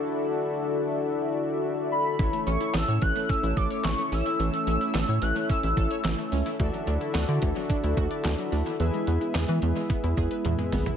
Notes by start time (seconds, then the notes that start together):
Already playing: D3 D4 E4 F#4 A4 D5 E5
1.92 B5
2.19 A1 E3 A3 C#4 E4 A4 C#5 E5, kick, closed hi-hat
2.33 A3, closed hi-hat
2.47 A1 C#4 C#6, closed hi-hat
2.61 E4, closed hi-hat
2.74 A1 A4 E6, snare, clap, closed hi-hat
2.88 A2 C#5, closed hi-hat
3.02 A1 E3 F#6, kick, closed hi-hat
3.16 A3, closed hi-hat
3.29 C#4 E6, kick, closed hi-hat
3.43 A1 E4, closed hi-hat
3.57 A1 A4 D6, kick, closed hi-hat
3.70 C#5, closed hi-hat
3.84 A1 E3 C#6, snare, clap, closed hi-hat
3.98 A3, closed hi-hat
4.12 A1 C#4 E6, open hi-hat
4.26 E4, closed hi-hat
4.40 A1 E3 E6, closed hi-hat
4.53 A3, closed hi-hat
4.67 A1 C#4, closed hi-hat
4.81 E4, closed hi-hat
4.94 A1 A4, snare, clap, closed hi-hat
5.08 A2 C#5, closed hi-hat
5.22 A1 E3 F#6, closed hi-hat
5.36 A3, closed hi-hat
5.50 C#4 E6, kick, closed hi-hat
5.63 A1 E4, closed hi-hat
5.77 A1 A4, kick, closed hi-hat
5.91 C#5, closed hi-hat
6.04 A1 E3, snare, clap, closed hi-hat
6.18 A3, closed hi-hat
6.32 C#2 C#4, open hi-hat
6.46 E4, closed hi-hat
6.60 D2 D3 E3 D4 E4 F#4 A4 D5 E5, kick, closed hi-hat
6.73 F#3, closed hi-hat
6.87 D2 D4, closed hi-hat
7.01 E4, closed hi-hat
7.14 D2 F#4, snare, clap, closed hi-hat
7.28 D3 D5, closed hi-hat
7.42 D2 E3, kick, closed hi-hat
7.56 F#3, closed hi-hat
7.70 D4, kick, closed hi-hat
7.83 D2 E4, closed hi-hat
7.97 D2 F#4, kick, closed hi-hat
8.11 D5, closed hi-hat
8.24 D2 E3, snare, clap, closed hi-hat
8.38 F#3, closed hi-hat
8.52 D2 D4, open hi-hat
8.66 E4, closed hi-hat
8.80 E2 E3 G#3 B3 E4 G#4 B4 E5, closed hi-hat
8.94 G#3, closed hi-hat
9.07 E2 B3, closed hi-hat
9.21 E4, closed hi-hat
9.35 E2 G#4, snare, clap, closed hi-hat
9.48 E3 B4, closed hi-hat
9.62 E2 E3, closed hi-hat
9.76 G#3, closed hi-hat
9.90 B3, kick, closed hi-hat
10.04 E2 E4, closed hi-hat
10.17 E2 G#4, kick, closed hi-hat
10.31 B4, closed hi-hat
10.45 E2 E3, closed hi-hat, high tom
10.59 G#3, closed hi-hat, mid tom
10.72 G#1 B3, mid tom, open hi-hat
10.86 E4, closed hi-hat, floor tom